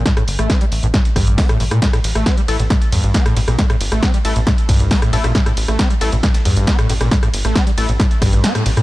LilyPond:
<<
  \new Staff \with { instrumentName = "Analog polysynth" } { \time 4/4 \key a \phrygian \tempo 4 = 136 r1 | r4. <a e' a'>8 r2 | r4. <a e' a'>8 r4. <a e' a'>8 | r4. <a e' a'>8 r2 |
r4. <a e' a'>8 r2 | }
  \new Staff \with { instrumentName = "Acid bass" } { \clef bass \time 4/4 \key a \phrygian a,16 a,16 r16 a16 c'16 g16 r16 a,16 a,16 r16 g,8 c'16 a,16 a,16 bes,16 | a,16 a,16 r16 a16 c'16 g16 r16 a,16 a,16 r16 g,8 c'16 a,16 a,16 bes,16 | a,16 a,16 r16 a16 c'16 g16 r16 a,16 a,16 r16 g,8 c'16 a,16 a,16 bes,16 | a,16 a,16 r16 a16 c'16 g16 r16 a,16 a,16 r16 g,8 c'16 a,16 a,16 bes,16 |
a,16 a,16 r16 a16 c'16 g16 r16 a,16 a,16 r16 g,8 c'16 a,16 a,16 bes,16 | }
  \new Staff \with { instrumentName = "Analog synth bass" } { \clef bass \time 4/4 \key a \phrygian r8 g,,16 a,,16 r8 a,,16 a,,16 r8 a,,16 a,,16 r8 a,,16 a,16 | r8 a,,16 a,,16 r8 a,,16 a,,16 r8 e,16 a,,16 r8 a,,16 a,,16 | r8 g,,16 a,,16 r8 a,,16 a,,16 r8 c,16 c,16 r8 a,,16 a,,16 | r8 a,,16 a,,16 r8 a,,16 a,,16 r8 e,16 a,,16 r8 a,,16 a,,16 |
r8 g,,16 a,,16 r8 a,,16 a,,16 r8 a,,16 a,,16 r8 a,,16 a,16 | }
  \new DrumStaff \with { instrumentName = "Drums" } \drummode { \time 4/4 <hh bd sn tamb>16 <hh ss>16 <hho tamb>16 <hh ss>16 <hh bd sn tamb>16 hh16 <hho tamb>16 hh16 <hh bd sn tamb>16 <hh sn>16 <hho bd ss tamb>16 hh16 <hh hho bd sn>16 <hh ss>16 <hho tamb>16 <hh ss>16 | <hh bd cymr sn tamb>16 <hh ss sn>16 <hho cymr tamb>16 <hh ss>16 <hh bd cymr sn tamb>16 hh16 <hho cymr tamb>16 <hh sn>16 <hh bd cymr sn tamb>16 <hh sn>16 <hho cymr tamb>16 hh16 <hh bd cymr sn tamb>16 <hh ss sn>16 <hho cymr tamb>16 <hh ss>16 | <hh bd cymr sn tamb>16 <hh ss>16 <hho cymr tamb>16 <hh ss>16 <hh bd cymr sn tamb>16 hh16 <hho cymr tamb>16 hh16 <hh bd cymr sn tamb>16 <hh sn>16 <hho bd cymr tamb>16 hh16 <hh hho bd cymr sn>16 <hh ss>16 <hho cymr tamb>16 <hh ss>16 | <hh bd cymr sn tamb>16 <hh ss sn>16 <hho cymr tamb>16 <hh ss>16 <hh bd cymr sn tamb>16 hh16 <hho cymr sn tamb>16 <hh sn>16 <hh bd cymr sn tamb>16 <hh sn tamb>16 <hho cymr sn>16 <hh tamb>16 <hh bd cymr sn tamb>16 <hh ss sn>16 <hho cymr tamb>16 <hh ss>16 |
<hh bd cymr sn tamb>16 <hh ss>16 <hho cymr tamb>16 <hh ss>16 <hh bd cymr sn tamb>16 hh16 <hho cymr tamb>16 hh16 <hh bd cymr sn tamb>16 <hh sn>16 <hho bd cymr ss tamb>16 <hh sn>16 <hh cymr sn tamb>16 <hh ss>16 <hho cymr sn tamb>16 <hh ss>16 | }
>>